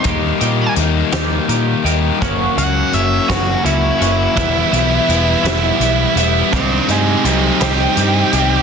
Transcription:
<<
  \new Staff \with { instrumentName = "Lead electric guitar" } { \time 6/8 \key e \minor \tempo 4. = 56 c'''4 r2 | r8 fis''8 e''8 fis'8 e'8 e'8~ | e'2~ e'8 r8 | <b' g''>8 <ees' c''>8 <ees' b'>8 g'4. | }
  \new Staff \with { instrumentName = "Overdriven electric guitar" } { \time 6/8 \key e \minor r2. | r2. | <e g b e'>8 <g b e'>8 <e g b e'>8 <g b e'>8 <e g b e'>8 <g b e'>8 | <c g c' ees'>8 <g c' ees'>8 <c g c' ees'>8 <g c' ees'>8 <c g c' ees'>8 <g c' ees'>8 | }
  \new Staff \with { instrumentName = "Clean electric guitar" } { \time 6/8 \key e \minor <dis ais dis' g'>8 <ais dis' g'>4 <dis ais dis' g'>8 <dis ais dis' g'>8 <ais dis' g'>8 | <fis, cis fis ais cis' fis'>8 <fis ais cis' fis'>4 <fis, cis fis ais cis' fis'>8 <fis ais cis' fis'>8 <fis ais cis' fis'>8 | <e, b, e g b e'>8 <e g b e'>4 <e, b, e g b e'>8 <e g b e'>8 <e g b e'>8 | <c ees g c' g'>8 <g c' g'>4 <c ees g c' g'>8 <ees g c' g'>8 <g c' g'>8 | }
  \new Staff \with { instrumentName = "Overdriven electric guitar" } { \time 6/8 \key e \minor <dis g ais dis'>8 <g ais dis'>8 <dis g ais dis'>8 <dis g ais dis'>4 <g ais dis'>8 | <fis, cis fis ais cis'>8 <fis ais cis'>8 <cis fis ais cis'>8 <fis, cis fis ais cis'>4 <fis ais cis'>8 | <e g b e'>8 <g b e'>8 <e g b e'>8 <e g b e'>4 <g b e'>8 | <c g c' ees'>8 <g c' ees'>8 <c g c' ees'>8 <c g c' ees'>4 <g c' ees'>8 | }
  \new Staff \with { instrumentName = "Picked electric bass" } { \clef bass \time 6/8 \key e \minor dis,8 ais,8 dis,8 dis,8 ais,8 dis,8 | fis,,8 cis,8 fis,,8 fis,,8 cis,8 fis,,8 | e,,8 b,,8 e,,8 e,,8 b,,8 e,,8 | c,8 g,8 c,8 c,8 g,8 c,8 | }
  \new DrumStaff \with { instrumentName = "Drums" } \drummode { \time 6/8 <hh bd>8 hh8 hh8 <hh sn>8 hh8 hh8 | <hh bd>8 hh8 hh8 <hh bd sn>8 hh8 hh8 | <hh bd>8 hh8 hh8 <hh sn>8 hh8 hh8 | <hh bd>8 hh8 hh8 <hh sn>8 hh8 hh8 | }
>>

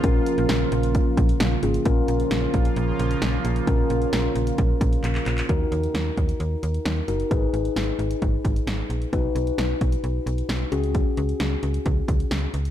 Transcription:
<<
  \new Staff \with { instrumentName = "Tine electric piano" } { \time 4/4 \key bes \phrygian \tempo 4 = 132 <des' f' bes'>2.~ <des' f' bes'>8 <des' f' aes'>8 | <des' f' bes'>1 | <des' f' bes'>1 | <ees' ges' bes'>2.~ <ees' ges' bes'>8 <ees' ges' bes'>8 |
<ees' aes' ces''>1 | <dis' fis' b'>2.~ <dis' fis' b'>8 <des' ges' aes'>8~ | <des' ges' aes'>2.~ <des' ges' aes'>8 r8 | }
  \new Staff \with { instrumentName = "Analog synth pad" } { \clef bass \time 4/4 \key bes \phrygian <des f bes f'>1 | <des f bes f'>1~ | <des f bes f'>1 | r1 |
r1 | r1 | r1 | }
  \new Staff \with { instrumentName = "FM bass" } { \clef bass \time 4/4 \key bes \phrygian bes,,8 r16 bes,,16 bes,,8 bes,,8. r16 bes,,8 bes,,8 aes,,8 | bes,,8 bes,,8 bes,,8 bes,,8 bes,,8 bes,,8 bes,,8 bes,,8 | bes,,8 bes,,8 bes,,8 bes,,8 bes,,8 bes,,8 bes,,8 bes,,8 | ees,8 ees,8 ees,8 ees,8 ees,8 ees,8 ees,8 ges,,8 |
aes,,8 aes,,8 aes,,8 aes,,8 aes,,8 aes,,8 aes,,8 bes,,8 | b,,8 b,,8 b,,8 b,,8 b,,8 b,,8 b,,8 des,8~ | des,8 des,8 des,8 des,8 des,8 des,8 des,8 des,8 | }
  \new DrumStaff \with { instrumentName = "Drums" } \drummode { \time 4/4 <hh bd>8 hh16 hh16 <hh sn>8 hh16 hh16 <hh bd>8 <hh bd>16 hh16 <hh sn>8 hh16 hh16 | <hh bd>8 hh16 hh16 <hh sn>8 <hh bd>16 hh16 hh8 hh16 hh16 <hh sn>8 hh16 hh16 | <hh bd>8 hh16 hh16 <hh sn>8 hh16 hh16 <hh bd>8 <hh bd>16 hh16 <hc hh>16 hc16 <hc hh>16 <hc hh>16 | <hh bd>8 hh16 hh16 <hh sn>8 <hh bd>16 hh16 hh8 hh16 hh16 <hh sn>8 hh16 hh16 |
<hh bd>8 hh16 hh16 <hh sn>8 hh16 hh16 <hh bd>8 <hh bd>16 hh16 <hh sn>8 hh16 hh16 | <hh bd>8 hh16 hh16 <hh sn>8 <hh bd>16 hh16 hh8 hh16 hh16 <hh sn>8 hh16 hh16 | <hh bd>8 hh16 hh16 <hh sn>8 hh16 hh16 <hh bd>8 <hh bd>16 hh16 <hh sn>8 hh16 hh16 | }
>>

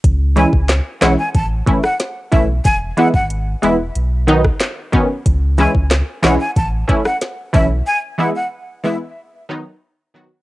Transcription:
<<
  \new Staff \with { instrumentName = "Flute" } { \time 4/4 \key cis \minor \tempo 4 = 92 r8 gis''16 r8. fis''16 gis''16 a''16 r8 fis''16 r8 e''16 r16 | gis''16 r16 fis''16 fis''16 r8 e''16 r2 r16 | r8 gis''16 r8. fis''16 gis''16 a''16 r8 fis''16 r8 e''16 r16 | gis''16 r16 fis''16 fis''16 r8 e''16 r2 r16 | }
  \new Staff \with { instrumentName = "Synth stab" } { \time 4/4 \key cis \minor r8 <e gis cis' e'>8 r8 <e gis cis' e'>8 r8 <e a cis' e'>8 r8 <e a cis' e'>8 | r8 <e gis b e'>8 r8 <e gis b e'>8 r8 <dis fis b dis'>8 r8 <dis fis b cis'>8 | r8 <e gis cis' e'>8 r8 <e gis cis' e'>8 r8 <e a cis' e'>8 r8 <e a cis' e'>8 | r8 <e gis b e'>8 r8 <e gis b e'>8 r8 <dis fis b dis'>8 r8 <dis fis b fis'>8 | }
  \new Staff \with { instrumentName = "Sub bass" } { \clef bass \time 4/4 \key cis \minor cis,8. cis,8 r16 b,,16 r16 a,,8 r4 b,,8 | e,,8 r16 gis,,8. e,,8 b,,4 r4 | cis,8. cis,8 r16 b,,16 r16 a,,8 r4 b,,8 | r1 | }
  \new DrumStaff \with { instrumentName = "Drums" } \drummode { \time 4/4 <hh bd>8 hh16 bd16 <hc hh sn>8 <hc hh sn>8 <hh bd>8 <hh bd>16 ss16 <hh sn>8 <hh bd>8 | <hh bd>8 hh16 bd16 hh8 hh8 hh8 hh16 <bd ss>16 <hc hh sn>8 <hh bd>8 | <hh bd>8 hh16 bd16 <hc hh sn>8 <hc hh sn>8 <hh bd>8 <hh bd>16 ss16 <hh sn>8 <hh bd>8 | r4 r4 r4 r4 | }
>>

